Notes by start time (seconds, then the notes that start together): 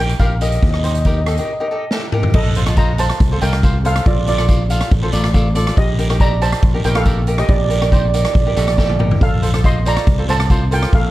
Already playing: A#1
0.00 D#4 G4 A#4 G5
0.09 closed hi-hat
0.19 A#1 D#4 G4 A#4 F5, kick, closed hi-hat, short guiro
0.41 D#4 G4 A#4 D#5, closed hi-hat, short guiro
0.49 D#5, closed hi-hat
0.56 D#5
0.62 D#2, kick, closed hi-hat, long guiro
0.71 D#5, cross-stick
0.79 D#5
0.84 D#4 G4 C5 D#5, closed hi-hat
0.95 D#5, closed hi-hat
1.01 D#5, closed hi-hat
1.05 D#4 G4 A#4, kick, short guiro
1.09 D#5
1.18 D#5
1.24 G4 A4 D#5, cross-stick, closed hi-hat
1.28 D#4 D#5
1.37 D#4 G4 A#4 D#5, closed hi-hat
1.45 D#5
1.53 D#5
1.60 D#4 G4 A#4 D#5
1.68 G4 A4 D#5
1.72 D#4 D#5
1.91 D#4 G4 A4, snare
2.12 D#4 G4 A#4, mid tom
2.23 floor tom
2.34 A#1 A4 D#5, kick, crash, long guiro
2.55 F4 A4 C5, closed hi-hat
2.66 F4 A4 D#5, cross-stick, closed hi-hat
2.77 F4 A4 C5 D#5 A#5, kick, closed hi-hat, short guiro
2.98 F4 A4 C5 A5, closed hi-hat, short guiro
3.10 cross-stick, closed hi-hat
3.20 C2, kick, closed hi-hat, long guiro
3.32 F4 A4 C5
3.41 C2 F4 A4 A#4 D#5 G5, closed hi-hat, short guiro
3.53 cross-stick, closed hi-hat
3.63 F4 A4 C5, kick, closed hi-hat, short guiro
3.85 F4 A4 C5 F5, closed hi-hat
3.96 cross-stick, closed hi-hat
4.06 A#1 F4 D5, kick, closed hi-hat, long guiro
4.27 F4 A4 D5, closed hi-hat
4.38 F4 A4 D5, cross-stick, closed hi-hat
4.48 F4 A4 D5, kick, closed hi-hat, short guiro
4.70 F4 A4 F5, closed hi-hat, short guiro
4.81 cross-stick, closed hi-hat
4.91 A1, kick, closed hi-hat, long guiro
5.03 F4 A4 C5
5.13 A1 F4 A4 D5, closed hi-hat, short guiro
5.24 cross-stick, closed hi-hat
5.34 F4 A4 D5, kick, closed hi-hat, short guiro
5.55 F4 A4 D5, closed hi-hat
5.67 cross-stick, closed hi-hat
5.77 A#1 G4 D#5, kick, closed hi-hat, long guiro
5.99 D#4 G4 A#4, closed hi-hat
6.10 D#4 G4 A#4, cross-stick, closed hi-hat
6.20 D#4 G4 A4 D5 A#5, kick, closed hi-hat, short guiro
6.41 D#4 G4 C5 A5, closed hi-hat, short guiro
6.53 cross-stick, closed hi-hat
6.62 A#1, kick, closed hi-hat, long guiro
6.74 D#4 G4 A#4
6.84 A#1 D#4 G4 A#4 G5, closed hi-hat, short guiro
6.95 A4 F5, cross-stick, closed hi-hat
7.05 D#4 G4 A#4, kick, closed hi-hat, short guiro
7.27 D#4 G4 A#4, closed hi-hat
7.38 G4 D#5, cross-stick, closed hi-hat
7.48 A#1 G4 D5, kick, closed hi-hat, long guiro
7.57 D5
7.64 D5
7.70 D#4 G4 A#4 D5, closed hi-hat
7.79 D#4 G4 A#4 D5, cross-stick, closed hi-hat
7.86 D5
7.92 D#4 G4 C5 D5, kick, closed hi-hat, short guiro
8.02 D5
8.09 D5
8.14 D#4 G4 A#4 D5, closed hi-hat, short guiro
8.25 D5, cross-stick, closed hi-hat
8.33 A#1 D5, kick, closed hi-hat, long guiro
8.41 D5
8.46 D#4 G4 A#4 D5
8.56 A#1 D#4 G4 A4 D5, closed hi-hat, short guiro
8.63 D5
8.68 D5, cross-stick, closed hi-hat
8.77 D#4 G4 A4 D5, kick, snare, short guiro
8.85 D5
8.89 high tom
8.99 D#4 G4 A#4, mid tom
9.11 floor tom
9.21 A#1 A4 F5, kick, closed hi-hat, long guiro
9.42 F4 A4 C5, closed hi-hat
9.54 F4 A4 C5, cross-stick, closed hi-hat
9.64 F4 A4 C5 D#5 C6, kick, closed hi-hat, short guiro
9.85 F4 A4 C5 D5 A#5, closed hi-hat, short guiro
9.97 cross-stick, closed hi-hat
10.07 C2, kick, closed hi-hat, long guiro
10.18 F4 A4 C5
10.29 C2 F4 A4 C5 A5, closed hi-hat, short guiro
10.40 cross-stick, closed hi-hat
10.50 F4 A4 C5, kick, closed hi-hat, short guiro
10.71 F4 A4 A#4 C5 G5, closed hi-hat
10.83 cross-stick, closed hi-hat
10.93 A#1 A4 F5, kick, closed hi-hat, long guiro